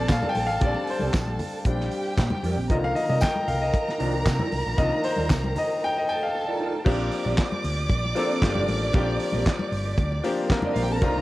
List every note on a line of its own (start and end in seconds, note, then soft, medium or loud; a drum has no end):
0.00 0.61 G3 medium
0.00 0.62 C4 medium
0.00 0.62 D4 medium
0.00 1.61 A4 medium
0.00 0.90 C5 medium
0.00 0.64 D5 medium
0.00 0.12 F5 medium
0.00 1.61 A5 medium
0.08 0.21 A#2 loud
0.08 0.28 F5 medium
0.08 muted clean electric guitar stroke soft
0.08 kick loud
0.08 snare loud
0.08 clap medium
0.08 closed hi-hat medium
0.08 tambourine medium
0.22 0.33 C4 medium
0.22 0.33 G4 medium
0.22 0.33 A#4 medium
0.22 0.33 D5 medium
0.22 muted conga soft
0.22 high conga medium
0.22 low conga medium
0.29 0.46 G5 medium
0.34 0.49 A#1 medium
0.34 muted clean electric guitar stroke soft
0.34 open hi-hat medium
0.34 high conga medium
0.47 0.59 A1 medium
0.47 0.63 F5 loud
0.47 muted clean electric guitar stroke soft
0.60 0.73 A#1 loud
0.60 1.65 G3 medium
0.60 0.82 C4 medium
0.60 1.65 C4 soft
0.60 1.66 D4 medium
0.60 0.74 G4 medium
0.60 0.73 A#4 medium
0.60 0.73 D5 loud
0.60 kick loud
0.60 closed hi-hat medium
0.60 muted conga soft
0.60 low conga medium
0.64 0.70 D5 medium
0.74 muted clean electric guitar stroke soft
0.74 muted conga soft
0.87 2.15 C5 medium
0.87 muted clean electric guitar stroke soft
0.87 open hi-hat medium
0.99 1.12 C2 medium
0.99 1.12 C4 medium
0.99 1.13 G4 medium
0.99 1.13 A#4 medium
0.99 1.13 D5 medium
0.99 high conga medium
1.13 1.36 A#1 medium
1.13 muted clean electric guitar stroke soft
1.13 kick loud
1.13 snare loud
1.13 clap medium
1.13 closed hi-hat medium
1.13 tambourine loud
1.27 muted clean electric guitar stroke soft
1.27 high conga medium
1.39 open hi-hat medium
1.39 low conga medium
1.54 muted clean electric guitar stroke soft
1.65 1.87 A#1 medium
1.65 1.89 G3 medium
1.65 1.90 C4 soft
1.65 1.90 D4 medium
1.65 2.68 G4 medium
1.65 2.68 G5 medium
1.65 muted clean electric guitar stroke soft
1.65 kick loud
1.65 closed hi-hat medium
1.80 muted clean electric guitar stroke soft
1.80 snare soft
1.91 open hi-hat medium
2.05 muted clean electric guitar stroke soft
2.17 2.29 A#2 loud
2.17 muted clean electric guitar stroke soft
2.17 kick loud
2.17 snare loud
2.17 clap loud
2.17 closed hi-hat medium
2.17 tambourine medium
2.17 muted conga soft
2.30 muted clean electric guitar stroke soft
2.30 muted conga soft
2.30 high conga medium
2.30 low conga medium
2.43 2.55 F2 medium
2.43 2.65 C4 medium
2.43 2.57 G4 medium
2.43 2.57 A#4 medium
2.43 2.56 D5 medium
2.43 open hi-hat medium
2.43 high conga medium
2.57 2.70 A#1 medium
2.57 muted clean electric guitar stroke soft
2.69 2.92 C2 medium
2.69 4.75 D3 medium
2.69 3.99 D#3 soft
2.69 3.99 F3 medium
2.69 3.99 A#3 soft
2.69 2.91 D#4 medium
2.69 2.83 F4 medium
2.69 6.04 A#4 medium
2.69 2.82 A#4 medium
2.69 2.82 D5 medium
2.69 2.76 D#5 medium
2.69 6.04 A#5 loud
2.69 kick loud
2.69 closed hi-hat medium
2.69 muted conga soft
2.69 low conga medium
2.83 2.96 F5 medium
2.83 muted clean electric guitar stroke soft
2.83 muted conga soft
2.95 3.08 D#5 medium
2.95 muted clean electric guitar stroke soft
2.95 open hi-hat medium
3.09 3.20 C3 loud
3.09 3.20 D#4 medium
3.09 3.20 F4 medium
3.09 3.21 A#4 medium
3.09 3.21 D5 medium
3.09 3.22 D#5 medium
3.09 high conga medium
3.21 3.48 G5 loud
3.21 muted clean electric guitar stroke medium
3.21 kick loud
3.21 snare loud
3.21 clap loud
3.21 closed hi-hat medium
3.21 tambourine loud
3.35 muted clean electric guitar stroke soft
3.35 muted conga soft
3.35 high conga medium
3.48 3.70 C2 medium
3.48 3.62 F5 medium
3.48 open hi-hat medium
3.48 low conga medium
3.61 4.10 D#5 medium
3.61 muted clean electric guitar stroke soft
3.73 muted clean electric guitar stroke soft
3.73 kick loud
3.73 closed hi-hat medium
3.73 muted conga soft
3.87 muted clean electric guitar stroke soft
3.87 snare soft
3.87 muted conga soft
3.98 4.22 C2 medium
3.98 4.23 D#3 soft
3.98 4.24 F3 soft
3.98 4.24 A#3 soft
3.98 4.24 D4 medium
3.98 4.20 D#4 medium
3.98 4.13 F4 medium
3.98 4.13 A#4 loud
3.98 4.12 D5 loud
3.98 open hi-hat medium
4.13 muted clean electric guitar stroke medium
4.25 4.38 C3 loud
4.25 muted clean electric guitar stroke soft
4.25 kick loud
4.25 snare loud
4.25 clap loud
4.25 closed hi-hat medium
4.25 tambourine medium
4.39 4.50 D#4 medium
4.39 4.51 F4 medium
4.39 4.51 A#4 medium
4.39 4.51 D5 medium
4.39 high conga medium
4.39 low conga medium
4.51 4.64 C2 medium
4.51 muted clean electric guitar stroke soft
4.51 open hi-hat medium
4.51 high conga medium
4.65 4.76 A#1 medium
4.65 muted clean electric guitar stroke soft
4.77 4.90 C2 loud
4.77 6.81 D#3 medium
4.77 6.82 F3 medium
4.77 6.82 A#3 soft
4.77 6.82 D4 medium
4.77 4.99 D#4 medium
4.77 4.91 F4 medium
4.77 4.91 A#4 loud
4.77 4.90 D5 medium
4.77 4.84 D#5 medium
4.77 kick loud
4.77 closed hi-hat medium
4.77 muted conga soft
4.77 low conga medium
4.91 muted clean electric guitar stroke soft
5.03 5.53 C5 medium
5.03 muted clean electric guitar stroke soft
5.03 open hi-hat medium
5.17 5.28 D#2 medium
5.17 5.27 D#4 medium
5.17 5.27 F4 medium
5.17 5.28 A#4 medium
5.17 5.28 D5 medium
5.17 high conga medium
5.28 5.52 C2 loud
5.28 muted clean electric guitar stroke medium
5.28 kick loud
5.28 snare loud
5.28 clap loud
5.28 closed hi-hat medium
5.28 tambourine loud
5.28 muted conga soft
5.43 muted clean electric guitar stroke medium
5.43 muted conga soft
5.43 high conga medium
5.56 5.84 D#5 loud
5.56 open hi-hat medium
5.56 low conga medium
5.69 muted clean electric guitar stroke medium
5.82 5.89 G5 loud
5.82 muted clean electric guitar stroke soft
5.95 6.09 D#5 medium
5.95 muted clean electric guitar stroke soft
6.07 6.84 A4 medium
6.07 6.23 G5 loud
6.07 6.84 A5 medium
6.22 6.71 F5 medium
6.22 muted clean electric guitar stroke medium
6.34 muted clean electric guitar stroke soft
6.47 6.59 D#4 medium
6.47 6.59 F4 medium
6.47 6.60 A#4 medium
6.47 6.60 D5 medium
6.60 6.77 D#4 medium
6.60 6.75 F4 medium
6.60 6.74 A#4 medium
6.60 6.74 D5 medium
6.75 muted clean electric guitar stroke soft
6.85 7.08 A#1 loud
6.85 7.70 F3 medium
6.85 7.70 A#3 medium
6.85 7.07 C4 medium
6.85 7.70 C4 medium
6.85 7.70 D4 medium
6.85 7.00 G4 medium
6.85 7.71 G4 loud
6.85 6.99 A#4 medium
6.85 10.33 D5 loud
6.85 6.98 D5 medium
6.85 10.33 D6 loud
6.85 kick loud
6.85 crash loud
6.85 low conga medium
6.99 muted clean electric guitar stroke soft
7.12 muted clean electric guitar stroke soft
7.12 open hi-hat medium
7.25 7.36 A#1 medium
7.25 7.37 C4 medium
7.25 7.38 G4 medium
7.25 7.38 A#4 medium
7.25 7.38 D5 medium
7.25 high conga medium
7.37 muted clean electric guitar stroke soft
7.37 kick loud
7.37 snare loud
7.37 clap loud
7.37 closed hi-hat medium
7.37 muted conga soft
7.52 muted clean electric guitar stroke medium
7.52 muted conga soft
7.52 high conga medium
7.64 7.86 D2 loud
7.64 open hi-hat medium
7.78 muted clean electric guitar stroke soft
7.90 8.12 A#1 medium
7.90 muted clean electric guitar stroke soft
7.90 kick loud
7.90 closed hi-hat medium
7.90 high conga medium
8.04 muted clean electric guitar stroke soft
8.04 muted conga soft
8.15 8.37 F3 loud
8.15 8.37 A#3 medium
8.15 8.37 C4 loud
8.15 8.37 C4 medium
8.15 8.37 D4 medium
8.15 8.31 G4 loud
8.15 8.38 A4 loud
8.15 8.30 A#4 loud
8.15 8.30 D5 loud
8.15 open hi-hat medium
8.31 muted clean electric guitar stroke soft
8.42 8.64 G1 loud
8.42 8.85 F3 medium
8.42 8.85 A#3 medium
8.42 8.85 C4 medium
8.42 8.49 C#4 medium
8.42 8.85 G4 medium
8.42 kick loud
8.42 snare loud
8.42 clap loud
8.42 closed hi-hat medium
8.42 muted conga soft
8.49 8.88 D4 medium
8.55 8.66 C4 medium
8.55 8.66 G4 medium
8.55 8.67 A#4 medium
8.55 8.67 D5 medium
8.55 high conga medium
8.55 low conga medium
8.67 8.90 A1 loud
8.67 muted clean electric guitar stroke soft
8.67 open hi-hat medium
8.67 high conga medium
8.81 muted clean electric guitar stroke soft
8.93 9.16 A#1 loud
8.93 9.78 F3 medium
8.93 9.78 A#3 medium
8.93 9.15 C4 medium
8.93 9.78 C4 medium
8.93 9.78 D4 medium
8.93 9.07 G4 loud
8.93 9.79 G4 loud
8.93 9.07 A#4 loud
8.93 9.06 D5 loud
8.93 kick loud
8.93 closed hi-hat medium
8.93 muted conga soft
8.93 low conga medium
9.07 muted clean electric guitar stroke soft
9.20 muted clean electric guitar stroke soft
9.20 open hi-hat medium
9.32 9.44 A#1 medium
9.32 9.44 C4 medium
9.32 9.45 G4 medium
9.32 9.45 A#4 medium
9.32 9.46 D5 medium
9.32 high conga medium
9.46 kick loud
9.46 snare loud
9.46 clap loud
9.46 closed hi-hat medium
9.46 muted conga soft
9.59 muted clean electric guitar stroke soft
9.59 muted conga soft
9.59 high conga medium
9.72 9.94 G1 loud
9.72 open hi-hat medium
9.86 muted clean electric guitar stroke medium
9.97 10.20 D2 loud
9.97 muted clean electric guitar stroke soft
9.97 kick loud
9.97 closed hi-hat medium
9.97 muted conga soft
9.97 high conga medium
10.12 muted clean electric guitar stroke soft
10.12 muted conga soft
10.24 10.45 F3 loud
10.24 10.45 A#3 medium
10.24 10.45 C4 medium
10.24 10.46 D4 medium
10.24 10.46 G4 loud
10.24 open hi-hat medium
10.38 muted clean electric guitar stroke medium
10.42 10.50 A#3 medium
10.42 10.50 A#4 medium
10.50 10.92 F3 medium
10.50 10.93 A#3 medium
10.50 10.59 C4 medium
10.50 10.93 C4 medium
10.50 10.93 D4 medium
10.50 10.93 A#4 medium
10.50 10.59 C5 medium
10.50 muted clean electric guitar stroke soft
10.50 kick loud
10.50 snare loud
10.50 clap medium
10.50 closed hi-hat medium
10.59 10.68 D4 medium
10.59 10.68 D5 medium
10.59 muted conga soft
10.59 high conga medium
10.59 low conga medium
10.64 10.75 C4 medium
10.64 10.76 D#4 medium
10.64 10.75 G4 medium
10.64 10.76 A#4 medium
10.64 10.76 D5 medium
10.64 10.76 D#5 medium
10.75 11.02 A#1 loud
10.75 10.93 C4 medium
10.75 10.84 F4 medium
10.75 10.89 G4 medium
10.75 10.89 A#4 medium
10.75 10.88 D5 medium
10.75 10.84 F5 medium
10.75 open hi-hat medium
10.75 high conga medium
10.84 10.93 G4 medium
10.84 10.93 G5 loud
10.89 11.01 A4 medium
10.89 11.01 A5 loud
10.89 muted clean electric guitar stroke soft
11.01 11.21 C2 loud
11.01 11.08 D3 medium
11.01 11.21 A#3 medium
11.01 11.21 C4 medium
11.01 11.21 D4 medium
11.01 11.21 D#4 loud
11.01 11.16 F4 loud
11.01 11.21 F4 loud
11.01 11.21 A#4 loud
11.01 11.16 A#4 medium
11.01 11.15 D5 loud
11.01 11.21 A#5 loud
11.01 kick loud
11.01 closed hi-hat medium
11.01 muted conga soft
11.01 low conga medium
11.08 11.21 D#3 medium
11.15 muted clean electric guitar stroke soft
11.15 muted conga soft